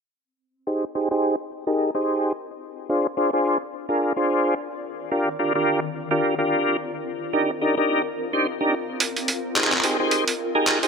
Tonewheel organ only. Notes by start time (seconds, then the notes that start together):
0.67 D#4 G4 G#4 C5
0.95 D#4 G4 G#4 C5
1.11 D#4 G4 G#4 C5
1.67 D#4 G4 G#4 A#4
1.95 D#4 G4 G#4 C5
2.89 D4 F4 G#4 C5
3.17 D4 F4 G#4 C5
3.33 D4 F4 G#4 C5
3.89 D4 F4 G#4 A#4
4.16 D4 F4 G#4 C5
5.11 D4 F4 G4 A#4
5.39 D4 F4 G4 A#4
5.55 D4 F4 G4 A#4
6.11 D4 F4 G4 A#4
6.38 D4 F4 G4 A#4
7.33 D4 D#4 G4 A#4
7.61 D4 D#4 G4 A#4
7.77 D4 D#4 G4 A#4
8.33 D4 D#4 G4 C5
8.61 D4 D#4 G4 A#4
9.56 D#4 G4 G#4 C5
9.84 D#4 G4 G#4 C5
10.00 D#4 G4 G#4 C5
10.55 D#4 G4 G#4 A#4
10.83 D#4 G4 G#4 C5